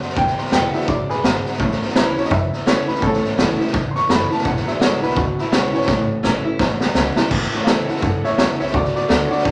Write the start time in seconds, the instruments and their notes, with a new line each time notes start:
Already playing: steel-string acoustic guitar F#2, upright piano C6
0.01 upright bass F#2, snare
0.09 snare
0.16 upright bass E1, steel-string acoustic guitar E2, upright piano G5, kick, snare
0.27 snare
0.37 upright piano C6, muted upright bass stroke, snare
0.45 snare
0.51 upright bass E1, steel-string acoustic guitar D3 G#3 B3 E4, upright piano G5, snare, hi-hat pedal
0.73 upright piano F#3 G#3 D4 E5, steel-string acoustic guitar B3 E4, muted upright bass stroke, snare
0.81 snare
0.87 upright bass E1, steel-string acoustic guitar F#2, upright piano D5, kick, snare
1.09 upright bass B1, upright piano G#4 B4, snare
1.23 upright bass G#1, steel-string acoustic guitar G#2, snare, hi-hat pedal
1.44 muted upright bass stroke, snare
1.53 snare
1.59 upright bass A1, steel-string acoustic guitar A2, upright piano E3 A3 C#4, kick, snare
1.71 snare
1.81 muted upright bass stroke, snare
1.89 snare
1.95 upright bass C#2, steel-string acoustic guitar E3 A3 C#4 E4, upright piano B4, snare, hi-hat pedal
2.16 upright bass E2, steel-string acoustic guitar C#4 E4, upright piano C#5, snare
2.24 upright piano D#5, snare
2.30 steel-string acoustic guitar E2, upright bass F#2, upright piano E5, kick, snare
2.52 muted upright bass stroke, snare
2.66 upright bass E2, steel-string acoustic guitar E3 A3 C#4 E4, upright piano C#5, snare, hi-hat pedal
2.87 upright bass C#2, steel-string acoustic guitar C#4 E4, upright piano B4, snare
2.95 snare
3.01 upright bass A1, steel-string acoustic guitar A2, upright piano E3 A3 C#4 A4, kick, snare
3.13 snare
3.24 muted upright bass stroke, snare
3.37 upright bass A1, steel-string acoustic guitar E3 A3 C#4 E4, snare, hi-hat pedal
3.59 steel-string acoustic guitar C#4 E4, muted upright bass stroke, snare
3.67 snare
3.73 upright bass A1, steel-string acoustic guitar E2, kick, snare
3.91 upright piano C6
3.95 upright bass E2, upright piano C#6, snare
4.09 upright bass F#1, steel-string acoustic guitar E3 A3 C#4 E4, upright piano B5, snare, hi-hat pedal
4.30 steel-string acoustic guitar C#4 E4, upright piano A5, muted upright bass stroke, snare
4.38 snare
4.44 upright bass E1, steel-string acoustic guitar E2, upright piano F#5, kick, snare
4.56 snare
4.66 upright piano F#3 G#3 D4 E5, muted upright bass stroke, snare
4.80 upright bass G#1, steel-string acoustic guitar D3 G#3 B3 E4, upright piano C#5, snare, hi-hat pedal
5.01 upright bass B1, steel-string acoustic guitar B3 E4, upright piano B4, snare
5.10 snare
5.16 upright bass D2, steel-string acoustic guitar B2, upright piano F#4, kick, snare
5.38 upright piano E4, muted upright bass stroke, snare
5.51 upright bass B1, steel-string acoustic guitar D3 G#3 B3 E4, upright piano C#4, snare, hi-hat pedal
5.72 upright bass G#1, steel-string acoustic guitar B3 E4, upright piano C#4, snare
5.81 snare
5.87 upright bass A1, steel-string acoustic guitar A2, upright piano E3 A3 C#4, kick, snare
6.09 muted upright bass stroke
6.23 upright bass A1, steel-string acoustic guitar E3 A3 C#4 E4, snare, hi-hat pedal
6.45 steel-string acoustic guitar C#4 E4, muted upright bass stroke
6.59 upright bass A1, steel-string acoustic guitar E2, upright piano E3 A3 C#4, kick, snare
6.80 upright bass E2, snare
6.95 upright bass C#2, steel-string acoustic guitar E3 A3 C#4 E4, snare, hi-hat pedal
7.16 steel-string acoustic guitar C#4 E4, muted upright bass stroke, snare
7.31 upright bass A1, steel-string acoustic guitar A2, kick, snare, crash
7.42 snare
7.52 upright piano E3 A3 C#4, muted upright bass stroke, snare
7.64 upright bass C#2, steel-string acoustic guitar E3 A3 C#4 E4, upright piano A4 F5, snare, hi-hat pedal
7.69 upright piano F#5
7.88 upright bass E2, steel-string acoustic guitar C#4 E4, upright piano A4 F#5, snare
7.96 snare
8.02 steel-string acoustic guitar E2, upright bass F#2, upright piano A4 F#5, kick, snare
8.24 upright piano E3 A3 C#4 C#5 E5, muted upright bass stroke, snare
8.38 upright bass E2, steel-string acoustic guitar E3 A3 C#4 E4, upright piano C#5 E5, snare, hi-hat pedal
8.59 upright bass C#2, steel-string acoustic guitar C#4 E4, upright piano C#5 E5, snare
8.67 snare
8.73 upright bass D2, steel-string acoustic guitar D3, upright piano F#4 D5, kick, snare
8.84 snare
8.95 upright piano F#4 D5, muted upright bass stroke, snare
9.08 upright bass D2, steel-string acoustic guitar D3 A3 D4 F#4, upright piano F#4 D5, snare, hi-hat pedal
9.27 upright piano F#3 A3 C#5, steel-string acoustic guitar F#4, muted upright bass stroke
9.31 upright piano D4 D5, steel-string acoustic guitar D4, snare
9.38 snare
9.44 upright bass D2, steel-string acoustic guitar A2, kick, snare